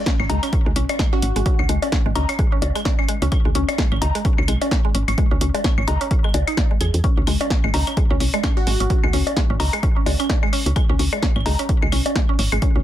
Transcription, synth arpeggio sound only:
0.06 C#4
0.20 C#4
0.30 G#3
0.43 C#4
0.53 C#4
0.66 G#3
0.76 C#4
0.89 C#4
0.99 G#3
1.13 C#4
1.23 C#4
1.36 G#3
1.46 C#4
1.59 C#4
1.69 G#3
1.83 C#4
1.92 C#4
2.06 G#3
2.16 C#4
2.29 C#4
2.39 G#3
2.52 C#4
2.62 C#4
2.75 G#3
2.85 C#4
2.99 C#4
3.08 G#3
3.22 C#4
3.32 C#4
3.45 G#3
3.55 C#4
3.69 C#4
3.78 G#3
3.92 C#4
4.01 C#4
4.15 G#3
4.25 C#4
4.38 C#4
4.48 G#3
4.61 C#4
4.71 C#4
4.85 G#3
4.95 C#4
5.08 C#4
5.18 G#3
5.31 C#4
5.41 C#4
5.54 G#3
5.64 C#4
5.78 C#4
5.88 G#3
6.01 C#4
6.11 C#4
6.24 G#3
6.34 G#3
6.48 D#4
6.71 G#3
6.81 G#4
7.04 C#4
7.17 C#4
7.27 G#3
7.41 C#4
7.50 C#4
7.64 G#3
7.74 C#4
7.87 C#4
7.97 G#3
8.10 C#4
8.20 C#4
8.34 G#3
8.44 C#4
8.57 C#4
8.67 G#3
8.80 C#4
8.90 C#4
9.04 G#3
9.13 C#4
9.27 C#4
9.37 G#3
9.50 C#4
9.60 C#4
9.73 G#3
9.83 C#4
9.96 C#4
10.06 G#3
10.20 C#4
10.29 C#4
10.43 G#3
10.53 C#4
10.66 C#4
10.76 G#3
10.89 C#4
10.99 C#4
11.13 G#3
11.22 C#4
11.36 C#4
11.46 G#3
11.59 C#4
11.69 C#4
11.82 G#3
11.92 C#4
12.06 C#4
12.16 G#3
12.29 C#4
12.39 C#4
12.52 G#3
12.62 C#4
12.76 C#4

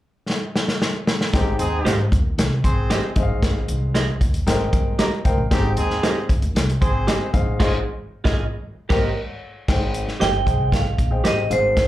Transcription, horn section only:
1.33 C4 D#4 G4
1.59 C4 D#4 G#4
2.64 C4 G#4 C5
5.51 C4 D#4 G4
5.78 C4 D#4 G#4
6.81 C4 G#4 C5

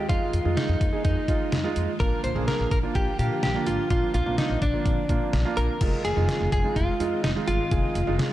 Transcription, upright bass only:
0.10 F2
0.33 F2
0.45 F2
0.69 F2
0.81 F2
1.05 F2
1.28 F3
1.52 F2
1.76 F2
2.00 A#1
2.24 A#1
2.36 A#1
2.60 A#1
2.71 A#1
2.95 A#1
3.19 A#2
3.43 A#1
3.67 G#1
3.90 A#1
4.14 A#1
4.26 A#1
4.50 A#1
4.62 A#1
4.86 A#1
5.09 A#2
5.33 A#1
5.57 A#1
5.81 F1
6.05 F1
6.17 F1
6.41 F1
6.52 F1
6.76 F1
7.00 F2
7.24 F1
7.48 G1
7.71 F1
7.95 F1
8.07 F1

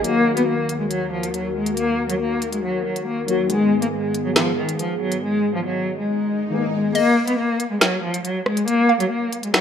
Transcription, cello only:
0.05 A#3
0.37 B3
0.47 A#3
0.80 G#3
0.91 F#3
1.12 F3
1.34 F#3
1.55 G#3
1.77 A#3
2.09 F#3
2.20 A#3
2.53 G#3
2.64 F#3
2.85 F#3
3.07 A#3
3.28 F#3
3.50 G#3
3.82 A#3
3.93 G#3
4.25 F#3
4.36 F3
4.58 D#3
4.79 F3
5.01 F#3
5.23 G#3
5.55 F3
5.66 F#3
5.98 G#3
6.52 A#3
6.74 G#3
6.95 A#3
7.27 B3
7.38 A#3
7.70 G#3
7.81 F#3
8.03 F3
8.24 F#3
8.46 G#3
8.68 A#3
9.00 F#3
9.11 A#3
9.43 G#3
9.54 F#3

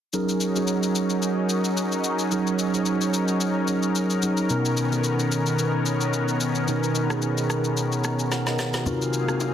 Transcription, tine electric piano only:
0.13 F#3 C#4 D#4 G#4 A#4
0.56 F#3 C#4 D#4 G#4 C#5
2.32 F#3 C#4 D#4 G#4 A#4
2.74 F#3 C#4 D#4 G#4 C5
2.82 C#5
3.68 F#3 C#4 D#4 G#4 C#5
4.22 F#3 C#4 D#4 G#4 A#4
4.50 B2 B3 C#4 D#4 A#4
4.92 B2 B3 C#4 D#4 A4
5.00 A#4
6.68 B2 B3 C#4 D#4 A#4
7.10 B2 B3 C#4 D#4 G#4
8.05 A#5
8.20 G#5
8.32 F#5
8.47 A#4 D#5
8.60 G#4 C#5 F#5
8.75 F#4
8.86 C3 C4 D#4 F4 F#4 A#4
9.28 C3 C4 D#4 F4 F#4 A#4

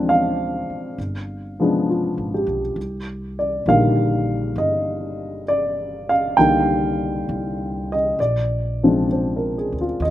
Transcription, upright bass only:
Already playing: D2
0.70 muted upright bass stroke
0.98 G1
2.18 G#1
2.47 B1
2.76 C2
3.66 A#1
4.56 G1
6.38 C2
7.29 C2
8.19 A#1
9.72 D2
10.00 D#2

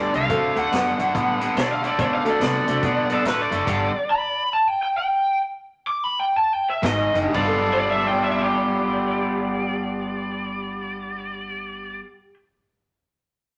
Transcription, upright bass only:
0.15 C2
0.30 D2
0.56 D2
0.72 F#2
0.99 F#2
1.15 A2
1.56 B2
1.99 D3
2.40 C3
2.67 C3
2.83 B2
3.24 A2
3.51 F#1
3.67 G1
6.83 G#1
7.14 F#1
7.34 G1

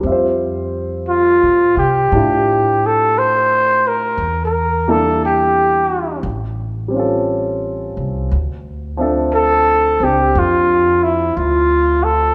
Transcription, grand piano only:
0.01 G3 C4
0.06 F4 E5
0.12 C5
2.13 D4 E4 F4 G4
4.88 G3 A#3 D4 E4 G4
6.88 G3 C4
6.94 C#4 F4
6.99 A4
8.97 F3 C4 D4 E5
9.02 A4
10.01 C4 D4 G4

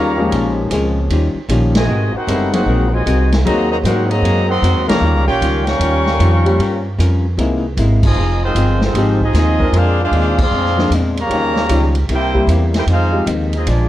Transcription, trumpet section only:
Already playing: G4 C#5 F5 A#5
1.77 F#4 C5 D#5 G#5
2.16 D#4 A#4 C5 F#5
2.55 D#4 A#4 C5 F#5
2.94 F#4 C5 D#5 G#5
3.45 F#4 C5 D#5 A#5
3.71 F#4 C5 D#5 A#5
3.85 D#4 A#4 C5 F#5
4.10 F#4 C5 D#5 A#5
4.49 A#4 D#5 F#5 C6
4.88 G4 C#5 F5 A#5
5.26 F4 A#4 C#5 G5
5.68 A#4 F5 G5 C#6
8.05 C4 F4 G#4 D#5
8.44 G#3 D#4 F4 C5
8.84 G#3 D#4 F4 C5
9.24 C4 F4 G#4 D#5
9.77 D4 G#4 C5 F5
10.03 D4 G#4 C5 F5
10.42 G#4 D5 F5 C6
11.21 G4 C#5 F5 A#5
12.14 E4 A#4 C5 G5
12.78 E4 A#4 C5 G5
12.91 D#4 G#4 C5 F5
13.55 C4 F4 G#4 D#5
13.69 A#3 F4 G#4 D5

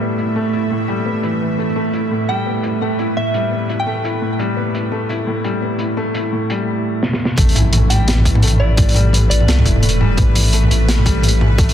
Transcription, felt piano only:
Already playing: A2 G3 A3 E4
0.00 B3
0.19 E4
0.36 A3
0.53 E4
0.71 A2
0.88 G3
1.06 B3
1.23 E3
1.41 E3
1.58 A3
1.76 A3
1.93 E4
2.11 A2
2.28 G3
2.46 B3
2.64 E4
2.81 A3
2.99 E4
3.17 A2
3.34 G3
3.51 B3
3.69 E4
3.87 A3
4.04 E4
4.22 A2
4.39 G3
4.57 B3
4.74 E4
4.92 A3
5.09 E4
5.27 A2
5.44 G3
5.62 B3
5.80 E4
5.97 A3
6.15 E4
6.32 A2
6.50 G3
7.37 A3
7.55 E4
7.73 A2
7.90 G3
8.08 B3
8.26 E4
8.43 A3
8.60 E4
8.78 A2
8.95 G3
9.13 B3
9.30 E4
9.48 A3
9.65 E4
9.83 A2
10.01 G3
10.18 B3
10.36 E4
10.53 A3
10.70 E4
10.88 A2
11.06 G3
11.23 B3
11.41 E4
11.59 A3

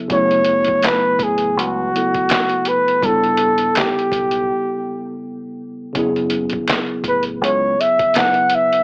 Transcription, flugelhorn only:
0.13 C#5
0.86 B4
1.23 G#4
1.59 F#4
2.68 B4
3.05 A4
3.78 G4
7.09 B4
7.44 C#5
7.80 E5
8.17 F#5
8.55 E5

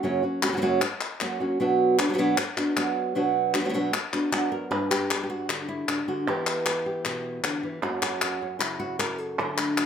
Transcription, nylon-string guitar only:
0.03 F#2 C#3 F#3 A#3 C#4 F#4
0.23 F#3 A#3 C#4 F#4
0.42 F#3 A#3 C#4 F#4
0.48 C#3 F#3 A#3 C#4 F#4
0.52 C#3 F#3 A#3 C#4 F#4
0.57 C#3 F#3 A#3 C#4 F#4
0.62 F#2 C#3 F#3 A#3 C#4 F#4
0.82 muted nylon-string guitar stroke
1.21 F#3 A#3 C#4 F#4
1.40 F#3 A#3 C#4 F#4
1.60 B2 F#3 B3 D4 F#4
1.99 B3 D4 F#4
2.09 F#3 B3 D4 F#4
2.14 F#3 B3 D4 F#4
2.18 B2 F#3 B3 D4 F#4
2.38 muted nylon-string guitar stroke
2.57 B3 D4 F#4
2.76 F#3 B3 D4 F#4
3.15 B2 F#3 B3 D4 F#4
3.54 B3 D4 F#4
3.60 F#3 B3 D4 F#4
3.65 F#3 B3 D4 F#4
3.69 F#3 B3 D4 F#4
3.74 B2 F#3 B3 D4 F#4
3.93 muted nylon-string guitar stroke
4.13 B3 D4 F#4
4.32 F#3 B3 D4 F#4
4.52 A#4
4.71 G2 B4
4.91 G4
5.11 D4
5.23 G4
5.30 F#4
5.49 D3
5.68 E4
5.88 C#3 D4
6.08 D3 F#4
6.27 E3 B3 E4 G4
6.67 G4
6.86 G4
7.05 B2
7.44 D3
7.63 E3
7.82 F#2 F#3 A#3 C#4 F#4
8.02 F#4
8.23 C#4
8.42 C#4
8.59 C#3 E4
8.80 F#4
8.99 A#4
9.18 A4
9.39 D3 F#3 A3 D4
9.59 A3
9.79 F#4

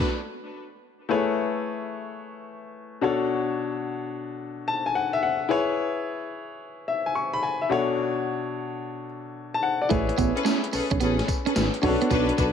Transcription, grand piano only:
1.09 A3 E4 G#4 B4 C#5
3.01 B2 D4 F#4 A4 C#5
4.68 A5
4.86 G#5
4.95 F#5
5.13 E5
5.23 F#5
5.49 E4 G#4 B4 C#5
6.88 E5
7.06 G#5
7.15 C#6
7.33 B5
7.43 G#5
7.62 E5
7.69 B2 D4 F#4 A4 C#5
9.54 A5
9.63 F#5
9.82 D5
9.89 E4 G#4 B4 C#5
11.82 C#4 F#4 A4 C#5
11.88 D4

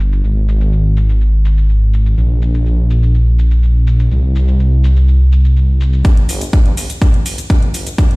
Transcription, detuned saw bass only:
Already playing: G1
0.24 G#1
2.18 A#1
4.11 C2
6.05 G1
6.29 G1
6.53 G1
6.66 G2
6.77 G1
7.02 G1
7.26 G1
7.50 G1
7.62 G1
7.74 G1
7.98 G#1

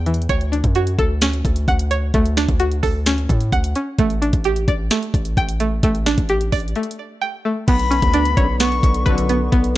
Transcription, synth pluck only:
Already playing: D4 E5 G5
0.06 E3
0.29 C#5
0.52 D4
0.76 F#4
0.99 A4
1.22 C#4
1.68 F#5
1.91 C#5
2.14 A3
2.37 D4
2.60 F#4
2.83 A4
3.07 C#4
3.52 F#5
3.76 C#4
3.99 A3
4.22 D4
4.45 G4
4.68 D5
4.91 A3
5.37 G5
5.60 A3
5.84 A3
6.06 D4
6.30 G4
6.52 D5
6.76 A3
7.21 G5
7.45 A3
7.68 B3
7.91 C#4
8.14 D4
8.37 C#5
8.60 B3
9.06 B4
9.29 B3
9.52 B3

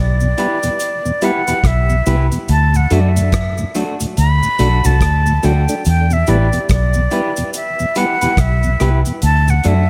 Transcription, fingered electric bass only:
Already playing: B1
1.64 B1
2.07 C2
2.49 D2
2.91 F#2
4.18 D2
4.60 B1
4.85 C2
5.01 D2
5.44 D2
5.87 E2
6.28 A1
6.70 B1
8.38 B1
8.81 C2
9.23 D2
9.66 F#2

